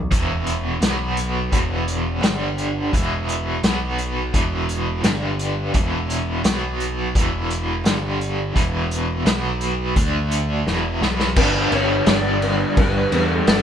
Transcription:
0.11 E1 E2 B2 E3, kick, closed hi-hat
0.47 closed hi-hat
0.81 B1 B2 F#3 B3, snare, closed hi-hat
1.17 closed hi-hat
1.52 E1 E2 B2 E3, kick, closed hi-hat
1.88 closed hi-hat
2.22 G1 G2 D3 G3, snare, closed hi-hat
2.58 closed hi-hat
2.92 E1 E2 B2 E3, kick, closed hi-hat
3.29 closed hi-hat
3.63 B1 B2 F#3 B3, snare, closed hi-hat
3.98 closed hi-hat
4.33 E1 E2 B2 E3, kick, closed hi-hat
4.69 closed hi-hat
5.04 G1 G2 D3 G3, snare, closed hi-hat
5.39 closed hi-hat
5.74 E1 E2 B2 E3, kick, closed hi-hat
6.10 closed hi-hat
6.44 B1 B2 F#3 B3, snare, closed hi-hat
6.80 closed hi-hat
7.15 E1 E2 B2 E3, kick, closed hi-hat
7.50 closed hi-hat
7.85 G1 G2 D3 G3, snare, closed hi-hat
8.21 closed hi-hat
8.55 E1 E2 B2 E3, kick, closed hi-hat
8.91 closed hi-hat
9.25 B1 B2 F#3 B3, snare, closed hi-hat
9.61 closed hi-hat
9.96 D2 D3 A3 D4, kick, closed hi-hat
10.31 closed hi-hat
10.66 E1 E2 B2 E3, snare
11.01 B1 B2 F#3 B3, snare
11.20 snare
11.36 G1 G2 D3 G3 B3 D4 G4 B4, kick, crash
11.72 G1 D4 G4 B4 C#5, crash
12.06 G1 D4 G4 B4 D5, snare, crash
12.42 D4 G4 B4, crash
12.77 G1 D4 G4 B4, kick, crash
13.11 E2 G2 D3 G3 B3 D4 G4 B4, crash
13.32 A4
13.47 G1 G2 D3 G3 B3 D4 G4 A4 B4, snare, crash

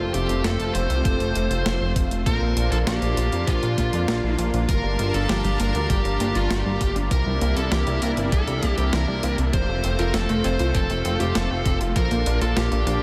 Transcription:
Already playing: F3 A3 C4 F4 A4
0.00 F1
0.14 F1 G4, closed hi-hat
0.29 F1, closed hi-hat
0.44 F1 A4, snare, closed hi-hat
0.60 F1, closed hi-hat
0.74 F1 C5, closed hi-hat
0.90 C2, closed hi-hat
1.05 F1, kick, closed hi-hat
1.20 F1, closed hi-hat
1.35 F1 F3 A3 C4 F4 A4, closed hi-hat
1.51 F1, closed hi-hat
1.66 F1, snare, closed hi-hat
1.81 F1
1.96 kick, closed hi-hat
2.11 F1, closed hi-hat
2.26 A#1 A#2 F3 A#3 D4 F4 A#4 C5, kick, closed hi-hat
2.41 A#1
2.57 A#1, closed hi-hat
2.72 A#1 A4, closed hi-hat
2.87 A#1 G4, snare, closed hi-hat
3.02 A#1, closed hi-hat
3.17 A#1, closed hi-hat
3.32 F2, closed hi-hat
3.47 A#1 F4, kick, closed hi-hat
3.63 A#2, closed hi-hat
3.78 A#1, kick, snare, closed hi-hat
3.93 F2, closed hi-hat
4.08 A#1, snare, closed hi-hat
4.23 A#1
4.38 A#1 G2 F3 A#3 D4 F4 A#4, closed hi-hat
4.54 A#1, closed hi-hat
4.69 G1 F3 G3 D4 A#4 A5, kick, closed hi-hat
4.84 G1 G3
4.99 G1 A#3, closed hi-hat
5.14 G1 D4 A4, closed hi-hat
5.29 G1 F3 G4, snare, closed hi-hat
5.44 G1 G3, closed hi-hat
5.60 G1 A#3 A#4, closed hi-hat
5.75 D2 D4, closed hi-hat
5.90 G1 F3 G4, kick, closed hi-hat
6.05 G1 G3, closed hi-hat
6.20 G1 A#3, closed hi-hat
6.35 G1 D4 F4, closed hi-hat
6.51 G1 F3 G4, snare, closed hi-hat
6.66 G1 G3
6.81 G1 A#3, kick, closed hi-hat
6.96 G1 D4, closed hi-hat
7.11 C2 C3 E3 A#3 D4 E4 A#4, kick, closed hi-hat
7.26 C2 G3
7.41 C2 A#3, closed hi-hat
7.56 C2 C4 A4, closed hi-hat
7.72 C2 E3 G4, snare, closed hi-hat
7.87 C2 G3, closed hi-hat
8.02 C2 A#3 A#4, closed hi-hat
8.17 G1 C4, closed hi-hat
8.32 C2 E3 A4, kick, closed hi-hat
8.47 C2 G3, closed hi-hat
8.63 C2 A#3, kick, snare, closed hi-hat
8.78 C2 C4 G4, closed hi-hat
8.93 C2 E3 A#4, snare, closed hi-hat
9.08 C2 G3
9.23 C2 A#3, closed hi-hat
9.38 C2 C4, closed hi-hat
9.53 F1 F3 A3 C4 F4 C5, kick, closed hi-hat
9.69 F1 A3
9.84 F1 C4, closed hi-hat
9.99 F1 F4 A#4, closed hi-hat
10.14 F1 F3 A4, snare, closed hi-hat
10.29 F1 A3, closed hi-hat
10.44 F1 C4 C5, closed hi-hat
10.59 C2 F4, closed hi-hat
10.75 F1 F3 A4, kick, closed hi-hat
10.90 F1 A3, closed hi-hat
11.05 F1 C4, closed hi-hat
11.20 F1 F4 G4, closed hi-hat
11.35 F1 F3 A4, snare, closed hi-hat
11.51 F1 A3
11.66 F1 C4, kick, closed hi-hat
11.81 F1 F4, closed hi-hat
11.96 A#1 F3 A#3 D4 A#4, kick, closed hi-hat
12.11 A#1 A#3, closed hi-hat
12.26 A#1 D4, closed hi-hat
12.41 A#1 F4 A4, closed hi-hat
12.56 A#1 F3 G4, snare, closed hi-hat
12.72 A#1 A#3, closed hi-hat
12.87 A#1 D4, closed hi-hat

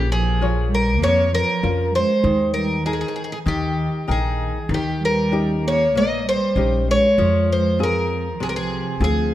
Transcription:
Already playing: A#1 A#3 G4
0.11 F3 G#4
0.41 F4 A#4 C#5
0.70 G3
0.75 A#4
1.01 F2 F3 A#3 C#5
1.32 F3 A#4
1.63 F2 C#4 F4 A#4
1.95 G#3 C5
2.24 D#2 D#3
2.54 G3 A#4
2.84 D#3 D#4 G#4 A#4
2.93 G#4
3.01 G#4
3.08 G#4
3.16 G#4
3.24 G#4
3.32 G#4
3.46 D#2 D#3 G4
4.07 A#1 D#3 D#4 G#4 A#4 G5
4.69 D#2 D#3
4.74 G4
5.02 G3 A#4
5.31 C#4 D#4 G4
5.66 A#3 C#5
5.95 A#1 A#3 D#5
6.26 G3 C5
6.56 A#1 C#4 D#4 G4
6.88 G#3 C#5
7.18 F2 F3
7.53 G#3 C5
7.79 C4 F4 G#4
7.83 F3 A#4
8.39 C2 C3 G#4
8.44 F3
8.49 G3 A#4
8.55 F3 G#4
9.00 D2 F3 C4 F4 G#4

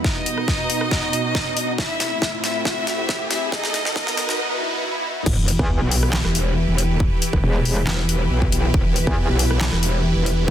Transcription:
Already playing: B3, riser
0.04 B2 D#4 F#4 D#5, kick, snare
0.26 closed hi-hat
0.38 cross-stick
0.48 kick, snare
0.70 closed hi-hat
0.81 cross-stick
0.91 kick, snare
1.13 closed hi-hat
1.35 kick, snare
1.57 closed hi-hat
1.78 A2 A3 C4 E4 E5, kick, snare
2.00 snare, closed hi-hat
2.22 kick, snare
2.44 E4 E5, snare, closed hi-hat
2.65 E4 E5, kick, snare
2.87 snare, closed hi-hat
3.09 kick, snare
3.31 E4 E5, snare, closed hi-hat
3.52 B2 B3 D#4 F#4 D#5, kick, snare
3.64 snare
3.74 snare, closed hi-hat
3.85 snare
3.96 D#4 D#5, kick, snare
4.07 snare
4.17 snare, closed hi-hat
4.29 snare
4.39 swell
5.26 E1 E3 E4 G4 B4, kick, crash, sub drop
5.48 closed hi-hat
5.59 E2, kick, cross-stick
5.81 B1
5.91 open hi-hat
6.03 cross-stick
6.13 snare, clap
6.25 E1, cross-stick
6.35 closed hi-hat
6.68 E1
6.78 closed hi-hat
7.00 kick
7.22 closed hi-hat
7.33 E1, kick, cross-stick
7.44 E1
7.65 open hi-hat
7.77 cross-stick
7.87 E1, snare, clap
8.09 closed hi-hat
8.31 B1
8.42 kick
8.52 B1, closed hi-hat
8.74 E1, kick
8.96 closed hi-hat
9.07 E2, kick, cross-stick
9.29 B1
9.39 open hi-hat
9.51 cross-stick
9.61 snare, clap
9.72 E1, cross-stick
9.83 closed hi-hat
10.16 E1
10.26 closed hi-hat

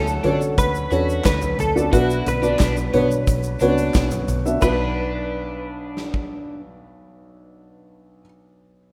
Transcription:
Already playing: D2 D3 A3 C#4 D4 F#4 A4 C#5 F#5
0.07 shaker
0.24 D3 C#4 D4 F#4 A4 C#5, closed hi-hat, floor tom
0.42 shaker
0.58 D2 B4, kick, closed hi-hat, shaker
0.75 shaker
0.91 E2 C#4 D4 F#4 A4 C#5, closed hi-hat, shaker
1.09 shaker
1.24 D2 B4, kick, snare, clap, closed hi-hat, shaker
1.42 floor tom, shaker
1.59 D2 A4, closed hi-hat, floor tom, shaker
1.75 C#4 D4 F#4 A4 D5, shaker
1.92 B1 B2 B3 D4 E4 F#4 B4 D5, kick, closed hi-hat, shaker
2.10 shaker
2.26 B1 B4, closed hi-hat, floor tom, shaker
2.42 B3 D4 F#4 B4 D5, shaker
2.59 B1, kick, snare, clap, closed hi-hat, shaker
2.77 shaker
2.93 B2 B3 D4 F#4 B4 C#5, closed hi-hat, floor tom
3.11 shaker
3.27 B1, kick, closed hi-hat, shaker
3.43 shaker
3.60 C#2 B3 C#4 D4 F#4 B4 C#5, closed hi-hat, shaker
3.68 D4
3.78 closed hi-hat, shaker
3.94 B1, kick, snare, clap, closed hi-hat, shaker
4.11 closed hi-hat, floor tom, shaker
4.28 B1, closed hi-hat, floor tom, shaker
4.46 B3 D4 F#4 B4 E5, shaker
4.60 B1 B3 D4 F#4 B4, kick, crash, shaker
5.97 snare
6.14 kick

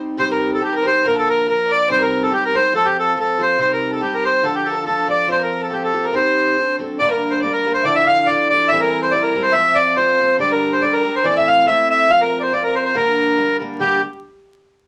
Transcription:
Already playing: G3 C4 D#4 G4
0.17 C3 G3 C4 D#4 G4 C5
0.31 A#4
0.53 A4
0.59 G3 C4 D#4 G4
0.65 G4
0.72 A#4
0.82 G3 C4 D#4 G4 C5
0.87 C5
1.03 A#2 D3 F3 A#3 D4 A#4
1.07 A#4
1.14 A4
1.19 A4
1.26 A#4
1.45 F3 A#3 D4 A#4
1.50 A#4
1.67 D5
1.71 D5
1.88 C3 G3 C4 D#4 G4 C5
1.99 A#4
2.23 A4
2.30 G3 C4 D#4 G4
2.40 A#4 C5
2.45 A#4
2.53 G3 C4 D#4 G4 C5
2.73 F3 C4 F4 A4
2.85 G4
2.96 A4
3.15 F3 C4 F4 A4
3.20 A4
3.38 F3 C4 F4 A4 C5
3.43 C5
3.58 C3 G3 C4 D#4 G4 C5
3.69 A#4
3.90 A4
4.01 G3 C4 D#4 G4
4.14 A#4
4.24 C5
4.43 D3 F3 D4 F4 A4
4.52 G4 A4
4.65 A4
4.71 A#4
4.76 A4
4.84 F3 D4 F4 A4
5.07 F3 D4 F4 A4 D5
5.27 F3 C4 F4 A4 C5
5.32 C5
5.39 A#4
5.60 A4
5.70 F3 C4 F4 G4 A4
5.84 A4
5.93 F3 C4 F4 A4
6.04 A#4
6.12 C3 G3 C4 D#4 G4 C5
6.56 F#3 C4 D4 A4
6.78 F#3 C4 D4 A4
6.99 G2 D3 G3 A#3 D4 A#4 D5
7.10 A#4
7.30 C5
7.40 G3 A#3 D5
7.44 D4 A#4
7.52 A#4
7.65 G3 A#3 D4 A#4
7.73 C5
7.81 D3 F3 D4 D5 E5
7.86 E4 A4
7.95 E5
8.07 F5
8.26 F3 D4 E4 A4 D5
8.50 F3 D4 E4 A4 D5
8.68 E3 G3 C4 E5
8.72 E4 A4
8.81 A#4
9.02 C5
9.11 G3 C4 E4 A4 D5
9.23 A#4
9.35 G3 C4 E4 A4
9.43 C5
9.53 F3 C4 F4 A4 E5
9.75 D5
9.97 F3 C4 F4 A4 C5
10.19 F3 C4 F4 A4
10.38 G2 D3 G3 D4 G4 A4 D5
10.51 A#4
10.73 C5
10.81 G3 D4 G4 A4 D5
10.93 A#4
11.03 G3 D4 G4 A4
11.16 C5
11.23 A2 E3 A3 C4 E4 A4 D5
11.36 E5
11.47 F5
11.66 A3 C4 E4 A4 E5
11.89 E5
12.09 F3 C4 F4 F5
12.21 A#4
12.40 C5 D5
12.52 F3 C4 F4 D5
12.63 A#4
12.75 C5
12.85 C5
12.94 G2 D3 G3 A#3 D4 A#4
13.36 G3 A#3 D4 A#4
13.59 G3 A#3 D4 A#4
13.79 G2 D3 G3 A#3 D4 G4

